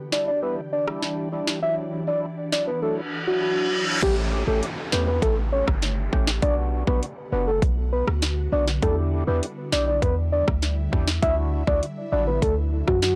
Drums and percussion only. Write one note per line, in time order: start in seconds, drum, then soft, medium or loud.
0.12 snare loud
0.88 cross-stick loud
1.03 snare medium
1.47 snare loud
2.52 snare loud
4.02 kick loud
4.02 closed hi-hat medium
4.02 crash loud
4.63 closed hi-hat medium
4.92 snare loud
5.22 kick loud
5.22 closed hi-hat medium
5.68 kick loud
5.68 cross-stick loud
5.82 snare medium
5.82 closed hi-hat medium
6.13 kick loud
6.27 snare loud
6.42 kick loud
6.42 closed hi-hat medium
6.87 kick loud
7.03 closed hi-hat medium
7.62 kick loud
7.62 closed hi-hat medium
8.08 cross-stick loud
8.22 snare loud
8.22 closed hi-hat medium
8.68 snare medium
8.82 kick loud
8.82 closed hi-hat medium
9.43 closed hi-hat medium
9.72 snare loud
10.02 kick loud
10.02 closed hi-hat medium
10.48 kick loud
10.48 cross-stick loud
10.62 snare medium
10.62 closed hi-hat medium
10.93 kick loud
11.08 snare loud
11.23 kick loud
11.23 closed hi-hat medium
11.67 kick loud
11.83 closed hi-hat medium
12.42 kick loud
12.42 closed hi-hat medium
12.88 kick loud
12.88 cross-stick loud
13.02 snare loud
13.02 closed hi-hat medium